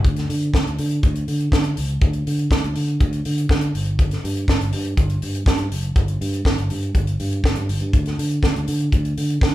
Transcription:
0.04 D2, kick, closed hi-hat
0.16 snare, closed hi-hat
0.29 D3, open hi-hat
0.42 closed hi-hat
0.54 D2, kick, snare
0.66 D2, closed hi-hat
0.78 D3, open hi-hat
0.91 closed hi-hat
1.03 D2, kick, closed hi-hat
1.15 closed hi-hat
1.28 D3, open hi-hat
1.40 closed hi-hat
1.52 D3, kick, snare
1.64 closed hi-hat
1.77 C#2, open hi-hat
1.88 closed hi-hat
2.01 D2, kick, closed hi-hat
2.13 closed hi-hat
2.27 D3, open hi-hat
2.39 closed hi-hat
2.51 D2, kick, snare
2.64 D2, closed hi-hat
2.75 D3, open hi-hat
2.88 closed hi-hat
3.00 D2, kick, closed hi-hat
3.12 closed hi-hat
3.25 D3, open hi-hat
3.38 closed hi-hat
3.49 D3, kick, snare
3.61 closed hi-hat
3.75 G1, open hi-hat
3.86 closed hi-hat
3.99 kick, closed hi-hat
4.11 snare, closed hi-hat
4.24 G2, open hi-hat
4.37 closed hi-hat
4.48 G1, kick, snare
4.61 G1, closed hi-hat
4.72 G2, open hi-hat
4.85 closed hi-hat
4.97 G1, kick, closed hi-hat
5.09 closed hi-hat
5.22 G2, open hi-hat
5.35 closed hi-hat
5.46 G2, kick, snare
5.58 closed hi-hat
5.71 F#1, open hi-hat
5.83 closed hi-hat
5.96 G1, kick, closed hi-hat
6.08 closed hi-hat
6.21 G2, open hi-hat
6.33 closed hi-hat
6.45 G1, kick, snare
6.58 G1, closed hi-hat
6.70 G2, open hi-hat
6.82 closed hi-hat
6.95 G1, kick, closed hi-hat
7.07 closed hi-hat
7.19 G2, open hi-hat
7.32 closed hi-hat
7.44 G1, kick, snare
7.55 G2, closed hi-hat
7.69 G1, open hi-hat
7.80 G2, closed hi-hat
7.93 D2, kick, closed hi-hat
8.05 snare, closed hi-hat
8.18 D3, open hi-hat
8.31 closed hi-hat
8.43 D2, kick, snare
8.56 D2, closed hi-hat
8.67 D3, open hi-hat
8.80 closed hi-hat
8.92 D2, kick, closed hi-hat
9.05 closed hi-hat
9.17 D3, open hi-hat
9.30 closed hi-hat
9.41 D3, kick, snare

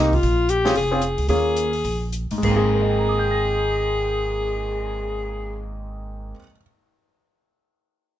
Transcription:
Already playing: C2 A#3 C4 D#4
0.00 G4
0.13 F4, kick, open hi-hat
0.23 A#1, open hi-hat
0.49 G4, closed hi-hat
0.65 C4 C#4 F4 G#4, snare, open hi-hat
0.75 F1 G#4, open hi-hat
0.91 C4 C#4 F4 G#4
1.01 closed hi-hat
1.18 C#2, open hi-hat
1.28 D#2 A#3 C#4 F4 G#4, open hi-hat
1.56 closed hi-hat
1.73 open hi-hat
1.84 A#1, open hi-hat
2.12 closed hi-hat
2.31 G#2, muted upright bass stroke, open hi-hat
2.38 G#3
2.43 G#1 A#3 G#4, kick, crash
2.50 C4
2.56 G#4
2.61 cymbal swell
2.74 A#4
2.81 D#5
2.89 G5
2.99 A#5
3.09 D#6
3.19 G6
3.31 A#6

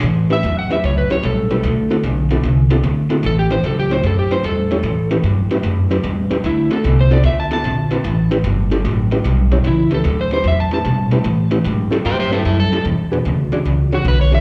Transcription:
0.03 A2 E3
0.30 A2 E3 C#4 E4 G4 B4 E5
0.43 E2 A2 F#3
0.59 F#5
0.70 A2 F#3 C#4 E4 G4 B4 E5
0.84 C#2 A2 F#3 C#5
0.98 B4
1.10 A2 F#3 C#4 E4 G4 C#5, muted upright bass stroke
1.23 B1 A2 G3 A4
1.50 A2 G3 C#4 E4 G4 B4
1.63 D2 D3 A3
1.90 D3 A3 C4 E4 F#4 A4
2.03 B1 D3 B3
2.30 D3 B3 C4 E4 F#4 A4
2.43 C2 D3 B3
2.70 D3 B3 C4 E4 F#4 A4
2.84 D2 D3 C4
3.10 D3 C4 E4 F#4 A4
3.23 A1 A2 E3 A4
3.39 G4
3.50 A2 E3 C#4 E4 G4 B4 C5
3.63 C#2 A2 F#3 A4
3.79 G4
3.91 A2 F#3 C#4 E4 G4 C5 C#5
4.03 F#2 A2 F#3 A4
4.19 G4
4.31 A2 F#3 C#4 E4 G4 B4 C5
4.43 E2 A2 G3 A4
4.71 A2 G3 C#4 E4 G4 C#5
4.83 A2 E3
5.11 A2 E3 C#4 E4 G4 B4
5.23 G2 A2 F#3
5.51 A2 F#3 C#4 E4 G4 B4
5.63 F#2 A2 F#3
5.91 A2 F#3 C#4 E4 G4 B4
6.03 E2 A2 G3
6.30 A2 G3 C#4 E4 G4 B4, muted upright bass stroke
6.44 D2 D3 A3 E4
6.70 D3 A3 C4 E4 F#4 A4
6.84 C2 D3 B3
7.01 C5
7.10 D3 B3 C4 E4 F#4 A4 D5
7.23 D2 D3 B3 E5
7.40 A5
7.51 D3 B3 C4 E4 F#4 A4 A5
7.64 A#1 D3 C4
7.91 D3 C4 E4 F#4 B4
8.04 A1 A2 E3
8.31 A2 E3 C#4 E4 G4 B4
8.44 G1 A2 F#3
8.71 A2 F#3 C#4 E4 G4 A4
8.85 A1 A2 F#3
9.11 A2 F#3 C#4 E4 G4 B4
9.24 B1 A2 G3
9.52 A2 G3 C#4 E4 G4 C#5
9.64 C#2 A2 E3 E4
9.91 A2 E3 C#4 E4 G4 A4 B4
10.04 D2 A2 F#3
10.21 C5
10.31 A2 F#3 C#4 E4 G4 B4 C5
10.44 E2 A2 F#3 E5
10.60 A5
10.71 A2 F#3 C#4 E4 G4 B4 A5
10.85 A2 B2 G3
11.11 A2 G3 C#4 E4 G4 B4, muted upright bass stroke
11.24 A2 E3
11.51 A2 E3 C#4 E4 G4 B4
11.65 G#2 A2 F#3
11.91 A2 F#3 C#4 E4 G4 A4, muted upright bass stroke
12.05 G2 A2 F#3 G4 C5
12.19 G4 C5
12.31 A2 F#3 C#4 E4 G4 A4 B4
12.45 F#2 A2 G3 E4 A4
12.60 A4
12.72 A2 G3 C#4 E4 G4 A4
12.85 E2 B2
13.12 E2 B2 D4 F#4 G#4 B4
13.25 D2 E2 C#3
13.52 E2 C#3 D4 F#4 G#4 D5, muted upright bass stroke
13.65 C#2 E2 C#3
13.92 E2 C#3 D4 F#4 G#4 C#5
14.05 B1 E2 D3 B4
14.21 C#5
14.32 E2 D3 D4 F#4 G#4 C#5 E5

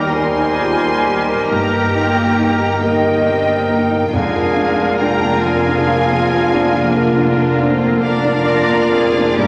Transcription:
Already playing: D#2 G3 D#4 G4 A#4 G5 A#5
0.12 G3 D#4 A#4 C5 G#5 C6
0.38 D#4
0.59 F4 G4 G#4
0.83 A#3
1.04 G4
1.28 A#4
1.48 G1 G2 D#3 A#3 D#4 G4 A#4 G5 A#5
1.73 A#4
1.95 D#4 F4
2.17 A#4
2.39 D#4
2.61 A#3
2.81 A#3 D#4 G4 A#4 D#5 G5
3.05 D#4
3.25 C4 D4 A#4
3.48 A#3
3.70 A#3 D#4 A#4
3.91 D#4
4.13 F1 F2 D3 G#3 A#3 D4 F4 G#4 A#4 F5 G#5
4.35 A#4
4.56 D4
4.79 A#4
4.99 D4 A#4 G5 A#5
5.24 A#3
5.43 C4 F4 G#4 A#4 F5 G#5
5.68 D4
5.89 A#4
6.11 A#3
6.31 A#4
6.52 D4
6.74 F3 A#3 D4 F4
6.96 A#4
7.15 D4
7.39 A#4
7.57 C4 D4
7.81 A#3
8.00 D4 F4 A#4 D5 F5
8.23 D4
8.44 D4 A#4
8.69 A#3
8.92 C4 G#4 A#4
9.16 D4
9.38 G1 G2 D#3 A#3 D#4 G4 A#4 D5 A#5 D6

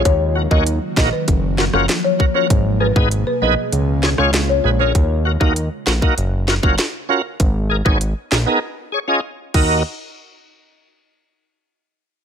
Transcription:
0.05 D#2 D#3 F#3 A#3 C#5, kick, closed hi-hat
0.35 F#4 A#4
0.51 D#2 A#3 D#4 F#4 C#5 D#5, kick
0.67 closed hi-hat
0.97 A#1 A#3 D#4 F#4 A#4 D#5, kick, snare
1.13 B4
1.28 F#1 F3, kick, closed hi-hat
1.58 F#4 A#4, snare
1.73 F#1 C#4 F4 F#4 A#4, cross-stick
1.89 snare, closed hi-hat
2.04 C#5
2.19 F#4 A#4, kick
2.34 C#4 F4 F#4 A#4 C#5
2.50 G#1 B2 G#4, kick, closed hi-hat
2.80 G#4 A#4 B4
2.96 G#1 B3 D#4 G#4 B4, kick
3.11 closed hi-hat
3.27 B4
3.42 A#1 B3 D#4 G#4 B4 D#5
3.72 C#2 C#3 G#3 F4, closed hi-hat
4.03 G#4 C#5, snare
4.18 C#2 C#4 F4 G#4 C#5, cross-stick
4.33 snare, closed hi-hat
4.49 C#5
4.64 A#1 G#4 B4
4.79 C#4 F4 G#4 A#4 C#5
4.95 D#2, kick, closed hi-hat
5.25 F#4 A#4
5.40 D#2 A#3 D#4 F#4 A#4, kick
5.56 closed hi-hat
5.86 A#1 F#4 A#4, snare
6.02 A#3 D#4 F#4 A#4, kick
6.18 F#1, closed hi-hat
6.48 F#4 A#4, snare
6.63 F#1 C#4 F4 F#4 A#4, kick
6.78 snare, closed hi-hat
7.09 C#4 F4 F#4 A#4
7.40 G#1, kick, closed hi-hat
7.70 G#4 A#4
7.85 G#1 B3 D#4 G#4 C#5, kick
8.01 closed hi-hat
8.31 A#1 G#4 A#4, snare
8.46 B3 D#4 G#4 A#4
8.92 G#4 C#5
9.08 C#4 F4 G#4 D#5
9.54 D#2 D#4 F#4 A#4 D#5, kick, crash

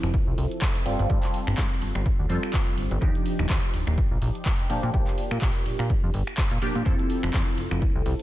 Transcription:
Already playing: F3 C4 E4 A4
0.03 F1, finger snap, closed hi-hat
0.14 kick
0.27 C2
0.38 C2, open hi-hat
0.51 closed hi-hat
0.62 kick, clap
0.75 closed hi-hat
0.85 G1 G3 C4 F4 A4, open hi-hat
0.99 G1, closed hi-hat
1.09 G2 G3 C4 F4 A4, kick
1.23 clap, closed hi-hat
1.34 open hi-hat
1.47 G1, finger snap, closed hi-hat
1.58 G2, kick, clap
1.71 closed hi-hat
1.82 G1, open hi-hat
1.95 G1, finger snap, closed hi-hat
2.06 kick
2.19 D2
2.29 F2 G3 C4 F4 A4, open hi-hat
2.43 finger snap, closed hi-hat
2.54 kick, clap
2.67 closed hi-hat
2.78 G1, open hi-hat
2.91 G1, closed hi-hat
3.01 D#2 F3 D4 D#4 G4, kick
3.15 closed hi-hat
3.26 open hi-hat
3.39 D#1, finger snap, closed hi-hat
3.50 D#2, kick, clap
3.74 D#1, open hi-hat
3.87 D#1, finger snap, closed hi-hat
3.98 kick
4.11 A#1
4.22 A#1, open hi-hat
4.35 closed hi-hat
4.46 kick, clap
4.59 closed hi-hat
4.70 A#2 F3 A#3 D4 G4, open hi-hat
4.83 A#2, closed hi-hat
4.93 A#1 F3 A#3 D4 G4, kick
5.07 clap, closed hi-hat
5.18 open hi-hat
5.31 A#2, finger snap, closed hi-hat
5.42 A#1, kick, clap
5.55 closed hi-hat
5.66 A#2, open hi-hat
5.79 A#2, finger snap, closed hi-hat
5.90 kick
6.03 F2
6.14 G1, open hi-hat
6.27 finger snap, closed hi-hat
6.38 kick, clap
6.51 A#2, closed hi-hat
6.62 A#2 F3 A#3 D4 G4, open hi-hat
6.75 A#2, closed hi-hat
6.85 F2 F3 C4 E4 A4, kick
6.99 closed hi-hat
7.10 open hi-hat
7.23 F1, finger snap, closed hi-hat
7.34 F2, kick, clap
7.58 F1, open hi-hat
7.71 F1, finger snap, closed hi-hat
7.82 kick
7.95 C2
8.06 C2, open hi-hat
8.19 closed hi-hat

